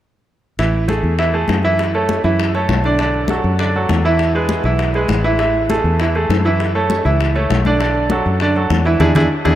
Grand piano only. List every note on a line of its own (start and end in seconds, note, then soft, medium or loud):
0.59 0.84 E3 medium
0.59 0.84 E4 medium
0.59 0.84 E5 medium
0.88 1.13 A3 medium
0.88 1.13 G#4 medium
0.88 1.13 A4 medium
1.18 1.31 E3 medium
1.18 1.31 E4 medium
1.18 1.31 E5 medium
1.33 1.58 A3 medium
1.33 1.59 G#4 medium
1.33 1.59 A4 medium
1.64 1.89 E3 medium
1.64 1.89 E4 medium
1.64 1.89 E5 medium
1.95 2.19 A3 medium
1.95 2.19 A4 medium
1.95 2.19 C#5 medium
2.24 2.49 E3 medium
2.24 2.49 E4 medium
2.24 2.49 E5 medium
2.54 2.79 A3 medium
2.54 2.79 A4 medium
2.54 2.79 C#5 medium
2.85 2.97 D3 medium
2.85 2.97 D4 medium
2.85 2.97 D5 medium
3.00 3.24 D3 medium
3.00 3.24 D4 medium
3.00 3.25 D5 medium
3.30 3.54 F#3 medium
3.30 3.54 F#4 medium
3.30 3.55 A4 medium
3.59 3.72 D3 medium
3.59 3.72 D4 medium
3.59 3.72 D5 medium
3.76 4.00 F#3 medium
3.76 4.00 F#4 medium
3.76 4.00 A4 medium
4.05 4.29 E3 medium
4.05 4.30 E4 medium
4.05 4.30 E5 medium
4.35 4.59 G#3 medium
4.35 4.60 G#4 medium
4.35 4.60 B4 medium
4.65 4.89 E3 medium
4.65 4.90 E4 medium
4.65 4.90 E5 medium
4.95 5.20 G#3 medium
4.95 5.20 G#4 medium
4.95 5.20 B4 medium
5.24 5.37 E3 medium
5.24 5.37 E4 medium
5.24 5.37 E5 medium
5.39 5.64 E3 medium
5.39 5.64 E4 medium
5.39 5.64 E5 medium
5.70 5.94 A3 medium
5.70 5.95 G#4 medium
5.70 5.95 A4 medium
6.01 6.13 E3 medium
6.01 6.13 E4 medium
6.01 6.13 E5 medium
6.15 6.40 A3 medium
6.15 6.40 G#4 medium
6.15 6.40 A4 medium
6.45 6.70 E3 medium
6.45 6.70 E4 medium
6.45 6.70 E5 medium
6.75 7.00 A3 medium
6.75 7.00 A4 medium
6.75 7.00 C#5 medium
7.05 7.30 E3 medium
7.05 7.30 E4 medium
7.05 7.30 E5 medium
7.35 7.60 A3 medium
7.35 7.60 A4 medium
7.35 7.60 C#5 medium
7.66 7.78 D3 medium
7.66 7.78 D4 medium
7.66 7.78 D5 medium
7.80 8.05 D3 medium
7.80 8.05 D4 medium
7.80 8.05 D5 medium
8.11 8.35 F#3 medium
8.11 8.35 F#4 medium
8.11 8.35 A4 medium
8.42 8.53 D3 medium
8.42 8.54 D4 medium
8.42 8.53 D5 medium
8.55 8.80 F#3 medium
8.55 8.80 F#4 medium
8.55 8.80 A4 medium
8.85 8.98 E3 medium
8.85 8.98 E4 medium
8.85 8.98 E5 medium
9.00 9.10 D4 medium
9.00 9.10 E4 medium
9.00 9.10 G#4 medium
9.16 9.25 D4 medium
9.16 9.25 E4 medium
9.16 9.25 G#4 medium
9.45 9.55 D4 medium
9.45 9.55 E4 medium
9.45 9.55 G#4 medium